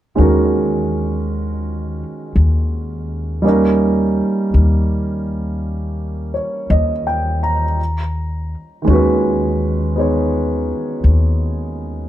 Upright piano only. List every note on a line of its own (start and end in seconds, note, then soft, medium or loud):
0.15 3.43 D#3 soft
0.15 3.43 G#3 soft
0.15 3.44 C#4 soft
0.15 3.45 F#4 soft
0.20 3.45 A#4 soft
3.42 7.78 G3 soft
3.42 7.79 A#3 soft
3.42 7.79 C#4 soft
3.42 7.80 D#4 soft
3.48 7.81 A#4 soft
6.34 6.90 C#5 soft
6.70 7.38 D#5 soft
7.07 7.63 G5 soft
7.43 7.99 A#5 soft
8.82 12.09 D#3 soft
8.82 12.09 G#3 soft
8.87 12.09 C#4 soft
8.87 12.09 F#4 soft
8.93 12.09 B4 soft
9.96 12.09 B3 soft
9.96 12.09 D#4 soft
9.96 12.09 G#4 soft
9.96 12.09 C#5 soft